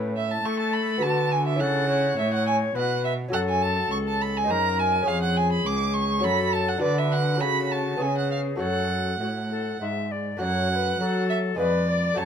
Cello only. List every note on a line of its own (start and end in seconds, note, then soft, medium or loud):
0.00 0.43 A2 medium
0.44 1.01 A3 medium
1.02 1.62 D3 medium
1.60 2.17 C#3 medium
2.18 2.75 A2 medium
2.76 3.32 B2 medium
3.33 3.87 F#2 medium
3.91 4.51 C#2 medium
4.49 5.07 F#2 medium
5.07 5.64 F2 medium
5.65 6.25 C#2 medium
6.24 6.82 F#2 medium
6.82 7.42 D3 medium
7.41 8.00 C#3 medium
8.00 8.59 C#3 medium
8.60 9.19 F#2 medium
9.20 9.80 A2 medium
9.81 10.40 G#2 medium
10.41 10.96 F#2 medium
10.99 11.58 F#3 medium
11.58 12.17 F2 medium
12.17 12.25 F#2 medium